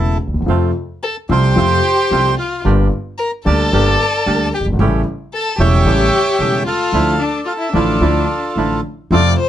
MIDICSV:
0, 0, Header, 1, 6, 480
1, 0, Start_track
1, 0, Key_signature, -1, "minor"
1, 0, Tempo, 538117
1, 433, Time_signature, 4, 2, 24, 8
1, 6664, Tempo, 547945
1, 8432, End_track
2, 0, Start_track
2, 0, Title_t, "Bandoneon"
2, 0, Program_c, 0, 23
2, 0, Note_on_c, 0, 64, 44
2, 0, Note_on_c, 0, 69, 43
2, 157, Note_off_c, 0, 64, 0
2, 158, Note_off_c, 0, 69, 0
2, 937, Note_on_c, 0, 81, 68
2, 1041, Note_off_c, 0, 81, 0
2, 1174, Note_on_c, 0, 72, 55
2, 1178, Note_on_c, 0, 79, 85
2, 2094, Note_off_c, 0, 72, 0
2, 2096, Note_off_c, 0, 79, 0
2, 2134, Note_on_c, 0, 77, 55
2, 2353, Note_off_c, 0, 77, 0
2, 2847, Note_on_c, 0, 82, 78
2, 2955, Note_off_c, 0, 82, 0
2, 3087, Note_on_c, 0, 81, 86
2, 3093, Note_on_c, 0, 74, 58
2, 4005, Note_off_c, 0, 81, 0
2, 4008, Note_off_c, 0, 74, 0
2, 4054, Note_on_c, 0, 79, 55
2, 4158, Note_off_c, 0, 79, 0
2, 4775, Note_on_c, 0, 81, 86
2, 4996, Note_on_c, 0, 73, 63
2, 4996, Note_on_c, 0, 76, 66
2, 4998, Note_on_c, 0, 79, 85
2, 5007, Note_off_c, 0, 81, 0
2, 5915, Note_off_c, 0, 73, 0
2, 5915, Note_off_c, 0, 76, 0
2, 5916, Note_off_c, 0, 79, 0
2, 5951, Note_on_c, 0, 69, 54
2, 5952, Note_on_c, 0, 77, 76
2, 6432, Note_on_c, 0, 74, 60
2, 6442, Note_off_c, 0, 77, 0
2, 6652, Note_off_c, 0, 74, 0
2, 6667, Note_on_c, 0, 77, 67
2, 6720, Note_off_c, 0, 77, 0
2, 6782, Note_on_c, 0, 76, 60
2, 6869, Note_off_c, 0, 69, 0
2, 6893, Note_off_c, 0, 76, 0
2, 6902, Note_on_c, 0, 74, 60
2, 6908, Note_on_c, 0, 65, 45
2, 6909, Note_on_c, 0, 69, 45
2, 7589, Note_off_c, 0, 74, 0
2, 7834, Note_off_c, 0, 65, 0
2, 7835, Note_off_c, 0, 69, 0
2, 8432, End_track
3, 0, Start_track
3, 0, Title_t, "Violin"
3, 0, Program_c, 1, 40
3, 920, Note_on_c, 1, 69, 62
3, 1028, Note_off_c, 1, 69, 0
3, 1175, Note_on_c, 1, 67, 72
3, 2095, Note_off_c, 1, 67, 0
3, 2131, Note_on_c, 1, 65, 49
3, 2351, Note_off_c, 1, 65, 0
3, 2838, Note_on_c, 1, 70, 63
3, 2948, Note_off_c, 1, 70, 0
3, 3093, Note_on_c, 1, 69, 77
3, 4008, Note_off_c, 1, 69, 0
3, 4054, Note_on_c, 1, 67, 51
3, 4158, Note_off_c, 1, 67, 0
3, 4762, Note_on_c, 1, 69, 66
3, 4978, Note_off_c, 1, 69, 0
3, 4993, Note_on_c, 1, 67, 80
3, 5913, Note_off_c, 1, 67, 0
3, 5945, Note_on_c, 1, 65, 66
3, 6391, Note_off_c, 1, 65, 0
3, 6416, Note_on_c, 1, 62, 51
3, 6643, Note_off_c, 1, 62, 0
3, 6650, Note_on_c, 1, 65, 54
3, 6707, Note_off_c, 1, 65, 0
3, 6763, Note_on_c, 1, 64, 54
3, 6883, Note_off_c, 1, 64, 0
3, 6892, Note_on_c, 1, 62, 51
3, 7584, Note_off_c, 1, 62, 0
3, 8119, Note_on_c, 1, 74, 70
3, 8335, Note_off_c, 1, 74, 0
3, 8350, Note_on_c, 1, 72, 67
3, 8432, Note_off_c, 1, 72, 0
3, 8432, End_track
4, 0, Start_track
4, 0, Title_t, "Bandoneon"
4, 0, Program_c, 2, 23
4, 427, Note_on_c, 2, 57, 62
4, 433, Note_on_c, 2, 60, 51
4, 434, Note_on_c, 2, 65, 66
4, 635, Note_off_c, 2, 57, 0
4, 638, Note_off_c, 2, 60, 0
4, 638, Note_off_c, 2, 65, 0
4, 1158, Note_on_c, 2, 60, 56
4, 1160, Note_on_c, 2, 57, 56
4, 1163, Note_on_c, 2, 65, 64
4, 1363, Note_off_c, 2, 57, 0
4, 1363, Note_off_c, 2, 60, 0
4, 1365, Note_off_c, 2, 65, 0
4, 1395, Note_on_c, 2, 57, 60
4, 1397, Note_on_c, 2, 60, 54
4, 1400, Note_on_c, 2, 65, 66
4, 1602, Note_off_c, 2, 57, 0
4, 1602, Note_off_c, 2, 60, 0
4, 1604, Note_off_c, 2, 65, 0
4, 1882, Note_on_c, 2, 57, 41
4, 1884, Note_on_c, 2, 65, 44
4, 1885, Note_on_c, 2, 60, 41
4, 2084, Note_off_c, 2, 57, 0
4, 2085, Note_off_c, 2, 65, 0
4, 2086, Note_off_c, 2, 60, 0
4, 2357, Note_on_c, 2, 58, 67
4, 2360, Note_on_c, 2, 62, 62
4, 2363, Note_on_c, 2, 67, 68
4, 2562, Note_off_c, 2, 58, 0
4, 2564, Note_off_c, 2, 62, 0
4, 2566, Note_off_c, 2, 67, 0
4, 3085, Note_on_c, 2, 58, 62
4, 3087, Note_on_c, 2, 62, 66
4, 3089, Note_on_c, 2, 67, 69
4, 3287, Note_off_c, 2, 58, 0
4, 3288, Note_off_c, 2, 62, 0
4, 3289, Note_off_c, 2, 67, 0
4, 3324, Note_on_c, 2, 58, 68
4, 3326, Note_on_c, 2, 62, 65
4, 3330, Note_on_c, 2, 67, 79
4, 3525, Note_off_c, 2, 58, 0
4, 3526, Note_off_c, 2, 62, 0
4, 3528, Note_off_c, 2, 67, 0
4, 3797, Note_on_c, 2, 62, 44
4, 3798, Note_on_c, 2, 58, 46
4, 3803, Note_on_c, 2, 67, 50
4, 3999, Note_off_c, 2, 62, 0
4, 4000, Note_off_c, 2, 58, 0
4, 4003, Note_off_c, 2, 67, 0
4, 4274, Note_on_c, 2, 61, 63
4, 4276, Note_on_c, 2, 57, 66
4, 4278, Note_on_c, 2, 67, 78
4, 4476, Note_off_c, 2, 61, 0
4, 4477, Note_off_c, 2, 57, 0
4, 4478, Note_off_c, 2, 67, 0
4, 4992, Note_on_c, 2, 57, 74
4, 4994, Note_on_c, 2, 67, 73
4, 4996, Note_on_c, 2, 61, 61
4, 5190, Note_off_c, 2, 57, 0
4, 5192, Note_off_c, 2, 67, 0
4, 5193, Note_off_c, 2, 61, 0
4, 5228, Note_on_c, 2, 57, 68
4, 5229, Note_on_c, 2, 61, 62
4, 5232, Note_on_c, 2, 67, 76
4, 5429, Note_off_c, 2, 57, 0
4, 5430, Note_off_c, 2, 61, 0
4, 5431, Note_off_c, 2, 67, 0
4, 5704, Note_on_c, 2, 57, 43
4, 5706, Note_on_c, 2, 61, 41
4, 5708, Note_on_c, 2, 67, 46
4, 5907, Note_off_c, 2, 57, 0
4, 5908, Note_off_c, 2, 61, 0
4, 5909, Note_off_c, 2, 67, 0
4, 6181, Note_on_c, 2, 53, 62
4, 6183, Note_on_c, 2, 62, 64
4, 6183, Note_on_c, 2, 64, 75
4, 6384, Note_off_c, 2, 53, 0
4, 6385, Note_off_c, 2, 64, 0
4, 6386, Note_off_c, 2, 62, 0
4, 6896, Note_on_c, 2, 62, 55
4, 6897, Note_on_c, 2, 53, 60
4, 6901, Note_on_c, 2, 64, 66
4, 7100, Note_off_c, 2, 53, 0
4, 7100, Note_off_c, 2, 62, 0
4, 7102, Note_off_c, 2, 64, 0
4, 7137, Note_on_c, 2, 53, 58
4, 7137, Note_on_c, 2, 62, 56
4, 7139, Note_on_c, 2, 64, 61
4, 7341, Note_off_c, 2, 53, 0
4, 7341, Note_off_c, 2, 62, 0
4, 7342, Note_off_c, 2, 64, 0
4, 7624, Note_on_c, 2, 53, 41
4, 7625, Note_on_c, 2, 62, 37
4, 7627, Note_on_c, 2, 64, 46
4, 7828, Note_off_c, 2, 53, 0
4, 7828, Note_off_c, 2, 62, 0
4, 7829, Note_off_c, 2, 64, 0
4, 8103, Note_on_c, 2, 60, 62
4, 8104, Note_on_c, 2, 57, 61
4, 8106, Note_on_c, 2, 65, 76
4, 8305, Note_off_c, 2, 57, 0
4, 8305, Note_off_c, 2, 60, 0
4, 8306, Note_off_c, 2, 65, 0
4, 8432, End_track
5, 0, Start_track
5, 0, Title_t, "Grand piano"
5, 0, Program_c, 3, 0
5, 0, Note_on_c, 3, 28, 42
5, 0, Note_on_c, 3, 40, 40
5, 0, Note_on_c, 3, 49, 39
5, 0, Note_on_c, 3, 52, 33
5, 0, Note_on_c, 3, 57, 36
5, 0, Note_on_c, 3, 64, 39
5, 144, Note_off_c, 3, 40, 0
5, 144, Note_off_c, 3, 49, 0
5, 145, Note_off_c, 3, 52, 0
5, 146, Note_off_c, 3, 28, 0
5, 146, Note_off_c, 3, 64, 0
5, 147, Note_off_c, 3, 57, 0
5, 240, Note_on_c, 3, 38, 40
5, 301, Note_on_c, 3, 39, 41
5, 306, Note_off_c, 3, 38, 0
5, 359, Note_on_c, 3, 40, 47
5, 367, Note_off_c, 3, 39, 0
5, 411, Note_on_c, 3, 48, 49
5, 412, Note_on_c, 3, 53, 63
5, 416, Note_on_c, 3, 41, 55
5, 418, Note_on_c, 3, 57, 50
5, 418, Note_on_c, 3, 65, 57
5, 426, Note_off_c, 3, 40, 0
5, 627, Note_off_c, 3, 48, 0
5, 628, Note_off_c, 3, 53, 0
5, 629, Note_off_c, 3, 41, 0
5, 630, Note_off_c, 3, 57, 0
5, 630, Note_off_c, 3, 65, 0
5, 1151, Note_on_c, 3, 48, 63
5, 1152, Note_on_c, 3, 36, 64
5, 1152, Note_on_c, 3, 53, 44
5, 1154, Note_on_c, 3, 57, 49
5, 1159, Note_on_c, 3, 65, 54
5, 1359, Note_off_c, 3, 48, 0
5, 1359, Note_off_c, 3, 53, 0
5, 1360, Note_off_c, 3, 36, 0
5, 1360, Note_off_c, 3, 57, 0
5, 1363, Note_off_c, 3, 65, 0
5, 1386, Note_on_c, 3, 53, 63
5, 1387, Note_on_c, 3, 48, 53
5, 1389, Note_on_c, 3, 41, 66
5, 1389, Note_on_c, 3, 57, 51
5, 1390, Note_on_c, 3, 65, 60
5, 1597, Note_off_c, 3, 48, 0
5, 1598, Note_off_c, 3, 41, 0
5, 1598, Note_off_c, 3, 53, 0
5, 1598, Note_off_c, 3, 57, 0
5, 1599, Note_off_c, 3, 65, 0
5, 1877, Note_on_c, 3, 53, 34
5, 1878, Note_on_c, 3, 48, 45
5, 1879, Note_on_c, 3, 65, 39
5, 1880, Note_on_c, 3, 57, 38
5, 1882, Note_on_c, 3, 36, 44
5, 2081, Note_off_c, 3, 53, 0
5, 2082, Note_off_c, 3, 48, 0
5, 2082, Note_off_c, 3, 65, 0
5, 2083, Note_off_c, 3, 57, 0
5, 2084, Note_off_c, 3, 36, 0
5, 2355, Note_on_c, 3, 50, 54
5, 2356, Note_on_c, 3, 31, 66
5, 2359, Note_on_c, 3, 55, 48
5, 2360, Note_on_c, 3, 43, 61
5, 2361, Note_on_c, 3, 58, 51
5, 2364, Note_on_c, 3, 67, 59
5, 2562, Note_off_c, 3, 31, 0
5, 2562, Note_off_c, 3, 50, 0
5, 2563, Note_off_c, 3, 55, 0
5, 2564, Note_off_c, 3, 43, 0
5, 2565, Note_off_c, 3, 58, 0
5, 2566, Note_off_c, 3, 67, 0
5, 3078, Note_on_c, 3, 50, 67
5, 3078, Note_on_c, 3, 55, 50
5, 3082, Note_on_c, 3, 58, 51
5, 3084, Note_on_c, 3, 38, 63
5, 3084, Note_on_c, 3, 67, 66
5, 3283, Note_off_c, 3, 55, 0
5, 3284, Note_off_c, 3, 50, 0
5, 3285, Note_off_c, 3, 58, 0
5, 3286, Note_off_c, 3, 38, 0
5, 3286, Note_off_c, 3, 67, 0
5, 3318, Note_on_c, 3, 50, 61
5, 3320, Note_on_c, 3, 43, 73
5, 3320, Note_on_c, 3, 55, 52
5, 3322, Note_on_c, 3, 31, 66
5, 3325, Note_on_c, 3, 58, 55
5, 3328, Note_on_c, 3, 67, 60
5, 3523, Note_off_c, 3, 43, 0
5, 3523, Note_off_c, 3, 50, 0
5, 3523, Note_off_c, 3, 55, 0
5, 3524, Note_off_c, 3, 31, 0
5, 3526, Note_off_c, 3, 58, 0
5, 3527, Note_off_c, 3, 67, 0
5, 3800, Note_on_c, 3, 50, 52
5, 3800, Note_on_c, 3, 58, 34
5, 3801, Note_on_c, 3, 38, 47
5, 3801, Note_on_c, 3, 55, 38
5, 3807, Note_on_c, 3, 67, 46
5, 4001, Note_off_c, 3, 50, 0
5, 4001, Note_off_c, 3, 58, 0
5, 4002, Note_off_c, 3, 38, 0
5, 4002, Note_off_c, 3, 55, 0
5, 4004, Note_off_c, 3, 67, 0
5, 4101, Note_on_c, 3, 30, 46
5, 4153, Note_on_c, 3, 31, 51
5, 4160, Note_off_c, 3, 30, 0
5, 4216, Note_off_c, 3, 31, 0
5, 4221, Note_on_c, 3, 32, 61
5, 4280, Note_off_c, 3, 32, 0
5, 4282, Note_on_c, 3, 33, 67
5, 4282, Note_on_c, 3, 45, 66
5, 4282, Note_on_c, 3, 49, 55
5, 4283, Note_on_c, 3, 55, 54
5, 4287, Note_on_c, 3, 57, 58
5, 4287, Note_on_c, 3, 64, 67
5, 4480, Note_off_c, 3, 33, 0
5, 4480, Note_off_c, 3, 45, 0
5, 4480, Note_off_c, 3, 49, 0
5, 4480, Note_off_c, 3, 55, 0
5, 4482, Note_off_c, 3, 57, 0
5, 4482, Note_off_c, 3, 64, 0
5, 4990, Note_on_c, 3, 49, 60
5, 4991, Note_on_c, 3, 55, 53
5, 4993, Note_on_c, 3, 40, 66
5, 4993, Note_on_c, 3, 57, 57
5, 4995, Note_on_c, 3, 28, 71
5, 4995, Note_on_c, 3, 64, 62
5, 5190, Note_off_c, 3, 49, 0
5, 5190, Note_off_c, 3, 55, 0
5, 5191, Note_off_c, 3, 40, 0
5, 5191, Note_off_c, 3, 57, 0
5, 5192, Note_off_c, 3, 28, 0
5, 5192, Note_off_c, 3, 64, 0
5, 5226, Note_on_c, 3, 49, 60
5, 5228, Note_on_c, 3, 33, 71
5, 5230, Note_on_c, 3, 45, 65
5, 5230, Note_on_c, 3, 57, 57
5, 5231, Note_on_c, 3, 55, 56
5, 5232, Note_on_c, 3, 64, 62
5, 5428, Note_off_c, 3, 49, 0
5, 5429, Note_off_c, 3, 33, 0
5, 5430, Note_off_c, 3, 45, 0
5, 5430, Note_off_c, 3, 55, 0
5, 5430, Note_off_c, 3, 57, 0
5, 5431, Note_off_c, 3, 64, 0
5, 5702, Note_on_c, 3, 49, 40
5, 5704, Note_on_c, 3, 55, 36
5, 5706, Note_on_c, 3, 40, 43
5, 5707, Note_on_c, 3, 28, 43
5, 5708, Note_on_c, 3, 57, 39
5, 5711, Note_on_c, 3, 64, 41
5, 5906, Note_off_c, 3, 49, 0
5, 5907, Note_off_c, 3, 55, 0
5, 5909, Note_off_c, 3, 28, 0
5, 5909, Note_off_c, 3, 40, 0
5, 5909, Note_off_c, 3, 57, 0
5, 5911, Note_off_c, 3, 64, 0
5, 6186, Note_on_c, 3, 50, 66
5, 6186, Note_on_c, 3, 53, 49
5, 6187, Note_on_c, 3, 38, 65
5, 6187, Note_on_c, 3, 57, 50
5, 6192, Note_on_c, 3, 64, 64
5, 6387, Note_off_c, 3, 53, 0
5, 6387, Note_off_c, 3, 57, 0
5, 6388, Note_off_c, 3, 38, 0
5, 6388, Note_off_c, 3, 50, 0
5, 6390, Note_off_c, 3, 64, 0
5, 6890, Note_on_c, 3, 53, 44
5, 6892, Note_on_c, 3, 50, 52
5, 6893, Note_on_c, 3, 45, 64
5, 6895, Note_on_c, 3, 33, 63
5, 6896, Note_on_c, 3, 57, 47
5, 6899, Note_on_c, 3, 64, 59
5, 7097, Note_off_c, 3, 53, 0
5, 7098, Note_off_c, 3, 45, 0
5, 7098, Note_off_c, 3, 50, 0
5, 7099, Note_off_c, 3, 33, 0
5, 7100, Note_off_c, 3, 57, 0
5, 7101, Note_off_c, 3, 64, 0
5, 7135, Note_on_c, 3, 50, 64
5, 7139, Note_on_c, 3, 38, 64
5, 7139, Note_on_c, 3, 53, 51
5, 7140, Note_on_c, 3, 57, 51
5, 7140, Note_on_c, 3, 64, 59
5, 7342, Note_off_c, 3, 38, 0
5, 7342, Note_off_c, 3, 50, 0
5, 7342, Note_off_c, 3, 53, 0
5, 7343, Note_off_c, 3, 57, 0
5, 7343, Note_off_c, 3, 64, 0
5, 7619, Note_on_c, 3, 45, 41
5, 7619, Note_on_c, 3, 53, 32
5, 7620, Note_on_c, 3, 50, 36
5, 7621, Note_on_c, 3, 33, 43
5, 7622, Note_on_c, 3, 57, 33
5, 7623, Note_on_c, 3, 64, 38
5, 7825, Note_off_c, 3, 45, 0
5, 7825, Note_off_c, 3, 50, 0
5, 7825, Note_off_c, 3, 53, 0
5, 7826, Note_off_c, 3, 33, 0
5, 7826, Note_off_c, 3, 57, 0
5, 7827, Note_off_c, 3, 64, 0
5, 8103, Note_on_c, 3, 48, 54
5, 8105, Note_on_c, 3, 41, 71
5, 8107, Note_on_c, 3, 53, 72
5, 8108, Note_on_c, 3, 57, 53
5, 8109, Note_on_c, 3, 65, 63
5, 8305, Note_off_c, 3, 48, 0
5, 8306, Note_off_c, 3, 41, 0
5, 8307, Note_off_c, 3, 57, 0
5, 8308, Note_off_c, 3, 53, 0
5, 8308, Note_off_c, 3, 65, 0
5, 8432, End_track
6, 0, Start_track
6, 0, Title_t, "Upright bass"
6, 0, Program_c, 4, 32
6, 0, Note_on_c, 4, 28, 48
6, 149, Note_off_c, 4, 28, 0
6, 246, Note_on_c, 4, 38, 35
6, 300, Note_off_c, 4, 38, 0
6, 305, Note_on_c, 4, 39, 41
6, 369, Note_off_c, 4, 39, 0
6, 374, Note_on_c, 4, 40, 54
6, 424, Note_off_c, 4, 40, 0
6, 429, Note_on_c, 4, 41, 69
6, 636, Note_off_c, 4, 41, 0
6, 1155, Note_on_c, 4, 36, 80
6, 1361, Note_off_c, 4, 36, 0
6, 1397, Note_on_c, 4, 41, 72
6, 1602, Note_off_c, 4, 41, 0
6, 1883, Note_on_c, 4, 36, 49
6, 2084, Note_off_c, 4, 36, 0
6, 2364, Note_on_c, 4, 31, 74
6, 2566, Note_off_c, 4, 31, 0
6, 3086, Note_on_c, 4, 38, 83
6, 3287, Note_off_c, 4, 38, 0
6, 3328, Note_on_c, 4, 31, 78
6, 3527, Note_off_c, 4, 31, 0
6, 3810, Note_on_c, 4, 38, 53
6, 4006, Note_off_c, 4, 38, 0
6, 4106, Note_on_c, 4, 30, 42
6, 4153, Note_off_c, 4, 30, 0
6, 4158, Note_on_c, 4, 31, 52
6, 4212, Note_off_c, 4, 31, 0
6, 4217, Note_on_c, 4, 32, 56
6, 4268, Note_off_c, 4, 32, 0
6, 4274, Note_on_c, 4, 33, 82
6, 4476, Note_off_c, 4, 33, 0
6, 4981, Note_on_c, 4, 28, 84
6, 5185, Note_off_c, 4, 28, 0
6, 5218, Note_on_c, 4, 33, 79
6, 5424, Note_off_c, 4, 33, 0
6, 5699, Note_on_c, 4, 28, 46
6, 5905, Note_off_c, 4, 28, 0
6, 6178, Note_on_c, 4, 38, 76
6, 6383, Note_off_c, 4, 38, 0
6, 6894, Note_on_c, 4, 33, 78
6, 7099, Note_off_c, 4, 33, 0
6, 7129, Note_on_c, 4, 38, 71
6, 7337, Note_off_c, 4, 38, 0
6, 7616, Note_on_c, 4, 33, 49
6, 7823, Note_off_c, 4, 33, 0
6, 8097, Note_on_c, 4, 41, 76
6, 8302, Note_off_c, 4, 41, 0
6, 8432, End_track
0, 0, End_of_file